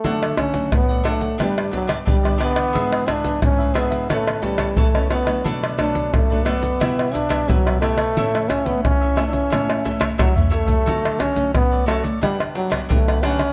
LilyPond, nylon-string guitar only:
\new Staff \with { instrumentName = "Nylon-string guitar" } { \time 4/4 \key d \major \tempo 4 = 89 << { <fis a d'>8 r16 <fis a d'>8. <fis a d'>16 r16 <g b d'>16 r16 <b d'>8 r16 <g b d'>8 <e b d'>16~ | <e b d'>8. <e b d'>8. <e b d'>8 <e b cis'>8 <e b cis'>8 r16 <e b cis'>8 <fis a d'>16~ | <fis a d'>8 <fis a d'>8. <fis a d'>16 <fis a d'>16 r16 <g b e'>8 r16 <g b e'>8. <g b e'>16 r16 | <e a cis'>8 r16 <e a cis'>8. <e a cis'>4 <e a cis'>8 r16 <e a cis'>8 <fis a>16~ |
<fis a>8. <fis a cis'>8. <fis a cis'>16 r16 <b d'>8. <fis b d'>8. <fis b d'>16 r16 | } \\ { d4 a,4 g,4 d4 | gis,4 gis,4 a,4 e4 | b,4 fis,4 b,4 b,4 | a,4 e4 a,4 e4 |
d4 a,4 g,4 d4 | } >> }